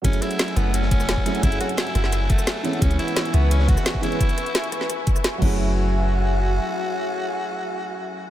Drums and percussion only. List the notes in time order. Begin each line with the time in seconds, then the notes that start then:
0.04 kick, closed hi-hat, ride, shaker
0.13 closed hi-hat, ride, shaker
0.22 cross-stick, snare, closed hi-hat, ride
0.31 closed hi-hat
0.39 snare, closed hi-hat, ride, shaker
0.48 snare, closed hi-hat
0.56 cross-stick, closed hi-hat, ride, shaker
0.74 closed hi-hat, ride, shaker
0.82 snare
0.91 kick, closed hi-hat, ride, shaker
1.00 cross-stick, snare, shaker
1.08 snare, closed hi-hat, ride, shaker
1.17 kick
1.26 snare, closed hi-hat, ride, shaker
1.35 closed hi-hat, ride
1.43 kick, closed hi-hat, ride, shaker
1.52 closed hi-hat, shaker
1.61 cross-stick, closed hi-hat, ride
1.69 closed hi-hat
1.77 snare, closed hi-hat, ride, shaker
1.87 snare, closed hi-hat
1.95 cross-stick, closed hi-hat, ride, shaker
2.04 snare
2.12 cross-stick, closed hi-hat, ride, shaker
2.30 kick, closed hi-hat, ride, shaker
2.39 cross-stick, shaker
2.47 snare, closed hi-hat, ride, shaker
2.56 snare
2.65 snare, closed hi-hat, ride, shaker
2.73 closed hi-hat
2.81 kick, closed hi-hat, ride, shaker
2.90 closed hi-hat, ride, shaker
2.99 cross-stick, snare, closed hi-hat, ride
3.08 closed hi-hat
3.16 snare, closed hi-hat, ride, shaker
3.25 snare, closed hi-hat
3.33 cross-stick, closed hi-hat, ride, shaker
3.51 closed hi-hat, ride, shaker
3.59 snare
3.68 kick, closed hi-hat, ride, shaker
3.77 cross-stick, snare, shaker
3.86 snare, closed hi-hat, ride, shaker
3.94 kick
4.03 snare, closed hi-hat, ride, shaker
4.12 closed hi-hat, ride
4.20 kick, closed hi-hat, shaker
4.29 closed hi-hat, shaker
4.38 cross-stick, closed hi-hat
4.46 closed hi-hat
4.55 snare, closed hi-hat, shaker
4.64 closed hi-hat
4.72 cross-stick, closed hi-hat, shaker
4.81 snare
4.90 cross-stick, closed hi-hat, shaker
5.07 kick, closed hi-hat, shaker
5.16 cross-stick, shaker
5.24 snare, closed hi-hat, shaker
5.42 kick, crash